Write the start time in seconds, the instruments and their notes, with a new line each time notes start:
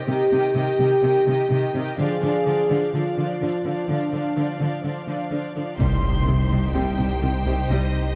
0.08 cello section C3, viola section D#3 G4, french horn section G4, violin section D#5 G5
0.32 cello section C3, viola section D#3 G4, violin section D#5 G5
0.55 cello section C3, viola section D#3 G4, french horn section G4, violin section D#5 G5
0.79 cello section C3, viola section D#3 G4, violin section D#5 G5
1.03 cello section C3, viola section D#3 G4, violin section D#5 G5
1.27 cello section C3, viola section D#3 G4, violin section D#5 G5
1.51 cello section C3, viola section D#3 G4, violin section D#5 G5
1.74 cello section C3, viola section D#3 G4, violin section D#5 G5
1.98 cello section D3, viola section F3 D4, french horn section G#4, violin section D5 F5
2.22 cello section D3, viola section F3 D4, violin section D5 F5
2.45 cello section D3, viola section F3 D4, violin section D5 F5
2.70 cello section D3, viola section F3 D4, violin section D5 F5
2.93 cello section D3, viola section F3 D4, french horn section F4, violin section D5 F5
3.17 cello section D3, viola section F3 D4, violin section D5 F5
3.41 cello section D3, viola section F3 D4, violin section D5 F5
3.65 cello section D3, viola section F3 D4, violin section D5 F5
3.89 cello section D3, viola section F3 D4, french horn section D4, violin section D5 F5
4.13 cello section D3, viola section F3 D4, violin section D5 F5
4.37 cello section D3, viola section F3 D4, violin section D5 F5
4.60 cello section D3, viola section F3 D4, violin section D5 F5
4.84 cello section D3, viola section F3 D4, violin section D5 F5
5.08 cello section D3, viola section F3 D4, violin section D5 F5
5.31 cello section D3, viola section F3 D4, violin section D5 F5
5.56 cello section D3, viola section F3 D4, violin section D5 F5
5.79 detuned saw bass C2, double bass section C2, cello section C3, viola section G3 D#4, french horn section G3 D#4, violin section G4 C5 C6, impact
6.27 double bass section C2, cello section C3, viola section D#3
6.51 double bass section C2, cello section C3, viola section G3
6.74 double bass section C2, cello section C3, viola section G3, violin section G5
6.98 double bass section C2, cello section C3, viola section G3
7.21 double bass section C2, cello section C3, viola section D#3
7.46 double bass section C2, cello section C3, viola section G3
7.70 double bass section C2, cello section C3, viola section G3, violin section D#5